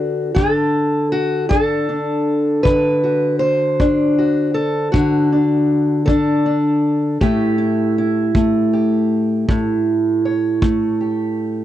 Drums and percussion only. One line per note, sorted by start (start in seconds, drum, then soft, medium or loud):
0.36 kick medium
1.51 kick medium
2.65 kick medium
3.80 kick medium
4.94 kick medium
6.08 kick medium
7.21 kick medium
8.35 kick medium
9.49 kick medium
10.62 kick medium